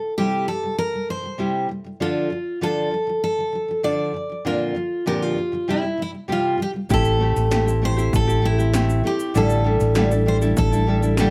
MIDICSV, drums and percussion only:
0, 0, Header, 1, 2, 480
1, 0, Start_track
1, 0, Tempo, 612245
1, 1573, Time_signature, 4, 2, 24, 8
1, 8861, End_track
2, 0, Start_track
2, 0, Title_t, "Drums"
2, 5408, Note_on_c, 9, 82, 63
2, 5412, Note_on_c, 9, 36, 94
2, 5486, Note_off_c, 9, 82, 0
2, 5491, Note_off_c, 9, 36, 0
2, 5525, Note_on_c, 9, 82, 44
2, 5603, Note_off_c, 9, 82, 0
2, 5772, Note_on_c, 9, 82, 51
2, 5774, Note_on_c, 9, 38, 36
2, 5851, Note_off_c, 9, 82, 0
2, 5853, Note_off_c, 9, 38, 0
2, 5890, Note_on_c, 9, 82, 55
2, 5892, Note_on_c, 9, 38, 108
2, 5968, Note_off_c, 9, 82, 0
2, 5970, Note_off_c, 9, 38, 0
2, 6021, Note_on_c, 9, 82, 58
2, 6100, Note_off_c, 9, 82, 0
2, 6259, Note_on_c, 9, 82, 50
2, 6338, Note_off_c, 9, 82, 0
2, 6375, Note_on_c, 9, 36, 88
2, 6380, Note_on_c, 9, 82, 80
2, 6453, Note_off_c, 9, 36, 0
2, 6458, Note_off_c, 9, 82, 0
2, 6504, Note_on_c, 9, 82, 49
2, 6582, Note_off_c, 9, 82, 0
2, 6739, Note_on_c, 9, 82, 52
2, 6818, Note_off_c, 9, 82, 0
2, 6849, Note_on_c, 9, 38, 98
2, 6851, Note_on_c, 9, 82, 71
2, 6927, Note_off_c, 9, 38, 0
2, 6929, Note_off_c, 9, 82, 0
2, 6975, Note_on_c, 9, 82, 47
2, 7053, Note_off_c, 9, 82, 0
2, 7210, Note_on_c, 9, 82, 63
2, 7288, Note_off_c, 9, 82, 0
2, 7331, Note_on_c, 9, 82, 65
2, 7409, Note_off_c, 9, 82, 0
2, 7446, Note_on_c, 9, 82, 50
2, 7525, Note_off_c, 9, 82, 0
2, 7685, Note_on_c, 9, 82, 58
2, 7687, Note_on_c, 9, 38, 31
2, 7763, Note_off_c, 9, 82, 0
2, 7765, Note_off_c, 9, 38, 0
2, 7801, Note_on_c, 9, 82, 60
2, 7803, Note_on_c, 9, 38, 98
2, 7879, Note_off_c, 9, 82, 0
2, 7881, Note_off_c, 9, 38, 0
2, 7929, Note_on_c, 9, 82, 59
2, 8007, Note_off_c, 9, 82, 0
2, 8167, Note_on_c, 9, 82, 58
2, 8245, Note_off_c, 9, 82, 0
2, 8286, Note_on_c, 9, 36, 100
2, 8286, Note_on_c, 9, 82, 87
2, 8364, Note_off_c, 9, 82, 0
2, 8365, Note_off_c, 9, 36, 0
2, 8411, Note_on_c, 9, 82, 56
2, 8489, Note_off_c, 9, 82, 0
2, 8646, Note_on_c, 9, 82, 51
2, 8725, Note_off_c, 9, 82, 0
2, 8760, Note_on_c, 9, 38, 116
2, 8762, Note_on_c, 9, 82, 75
2, 8838, Note_off_c, 9, 38, 0
2, 8840, Note_off_c, 9, 82, 0
2, 8861, End_track
0, 0, End_of_file